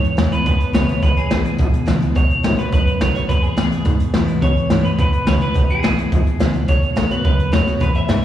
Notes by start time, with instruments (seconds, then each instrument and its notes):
Already playing: steel-string acoustic guitar E2, clean electric guitar C#5
0.04 muted upright bass stroke, closed hi-hat
0.17 upright bass D#2, steel-string acoustic guitar E3 G#3 B3 E4, snare, closed hi-hat
0.32 steel-string acoustic guitar B3 E4, clean electric guitar B4, closed hi-hat
0.46 upright bass E2, steel-string acoustic guitar B2, clean electric guitar B4, kick, closed hi-hat
0.60 muted upright bass stroke, closed hi-hat
0.73 upright bass C#2, steel-string acoustic guitar E3 G#3 B3 E4, clean electric guitar C#5, snare, closed hi-hat
0.89 closed hi-hat
1.02 upright bass B1, steel-string acoustic guitar E2, clean electric guitar B4, kick, closed hi-hat
1.17 clean electric guitar G#4, muted upright bass stroke, closed hi-hat
1.31 upright bass A1, steel-string acoustic guitar E3 G#3 B3 E4, snare, closed hi-hat
1.44 steel-string acoustic guitar B3 E4, muted upright bass stroke, closed hi-hat
1.58 upright bass G#1, steel-string acoustic guitar B2, kick, closed hi-hat
1.73 muted upright bass stroke, closed hi-hat
1.86 upright bass C#2, steel-string acoustic guitar E3 G#3 B3 E4, snare, closed hi-hat
2.01 steel-string acoustic guitar B3 E4, muted upright bass stroke, closed hi-hat
2.15 upright bass B1, steel-string acoustic guitar B2, clean electric guitar C#5, kick, closed hi-hat
2.29 muted upright bass stroke, closed hi-hat
2.43 upright bass G#1, steel-string acoustic guitar D#3 A3 B3 F#4, snare, closed hi-hat
2.57 steel-string acoustic guitar B3 F#4, clean electric guitar B4, muted upright bass stroke, closed hi-hat
2.72 upright bass A1, steel-string acoustic guitar F#2, clean electric guitar B4, kick, closed hi-hat
2.87 muted upright bass stroke, closed hi-hat
3.00 upright bass B1, steel-string acoustic guitar D#3 A3 B3 F#4, clean electric guitar C#5, snare, closed hi-hat
3.14 steel-string acoustic guitar B3 F#4, clean electric guitar C#5, muted upright bass stroke, closed hi-hat
3.29 upright bass E2, steel-string acoustic guitar E2, clean electric guitar B4, kick, closed hi-hat
3.43 clean electric guitar G#4, muted upright bass stroke, closed hi-hat
3.57 upright bass F#2, steel-string acoustic guitar E3 G#3 B3 E4, snare, closed hi-hat
3.71 steel-string acoustic guitar B3 E4, muted upright bass stroke, closed hi-hat
3.85 upright bass G#2, steel-string acoustic guitar B2, kick, closed hi-hat
4.00 muted upright bass stroke, closed hi-hat
4.14 upright bass A2, steel-string acoustic guitar E3 G#3 B3 E4, snare, closed hi-hat
4.28 muted upright bass stroke, closed hi-hat
4.42 steel-string acoustic guitar E2, upright bass B2, clean electric guitar C#5, kick, closed hi-hat
4.57 muted upright bass stroke, closed hi-hat
4.70 upright bass G#2, steel-string acoustic guitar E3 G#3 B3 E4, snare, closed hi-hat
4.85 steel-string acoustic guitar B3 E4, clean electric guitar B4, muted upright bass stroke, closed hi-hat
4.98 upright bass E2, steel-string acoustic guitar B2, clean electric guitar B4, kick, closed hi-hat
5.13 muted upright bass stroke, closed hi-hat
5.27 upright bass C#2, steel-string acoustic guitar E3 G#3 B3 E4, clean electric guitar C#5, snare, closed hi-hat
5.41 steel-string acoustic guitar B3 E4, clean electric guitar B4, closed hi-hat
5.54 upright bass B1, steel-string acoustic guitar E2, kick, closed hi-hat
5.70 clean electric guitar G#4, muted upright bass stroke, closed hi-hat
5.83 upright bass A1, steel-string acoustic guitar E3 G#3 B3 E4, snare, closed hi-hat
5.97 steel-string acoustic guitar B3 E4, muted upright bass stroke, closed hi-hat
6.12 upright bass G#1, steel-string acoustic guitar B2, kick, closed hi-hat
6.26 muted upright bass stroke, closed hi-hat
6.40 upright bass C#2, steel-string acoustic guitar E3 G#3 B3 E4, snare, closed hi-hat
6.54 steel-string acoustic guitar B3 E4, muted upright bass stroke, closed hi-hat
6.68 upright bass B1, steel-string acoustic guitar B2, clean electric guitar C#5, kick, closed hi-hat
6.82 muted upright bass stroke, closed hi-hat
6.96 upright bass A1, steel-string acoustic guitar D#3 A3 B3 F#4, snare, closed hi-hat
7.09 steel-string acoustic guitar B3 F#4, clean electric guitar B4, muted upright bass stroke, closed hi-hat
7.25 upright bass C#2, steel-string acoustic guitar F#2, clean electric guitar B4, kick, closed hi-hat
7.39 muted upright bass stroke, closed hi-hat
7.52 upright bass D#2, steel-string acoustic guitar D#3 A3 B3 F#4, clean electric guitar C#5, snare, closed hi-hat
7.65 steel-string acoustic guitar B3 F#4, closed hi-hat
7.80 steel-string acoustic guitar E2, upright bass E2, clean electric guitar B4, kick, closed hi-hat
7.94 clean electric guitar E5, muted upright bass stroke, closed hi-hat
8.08 upright bass G#2, steel-string acoustic guitar E3 G#3 B3 E4, snare, closed hi-hat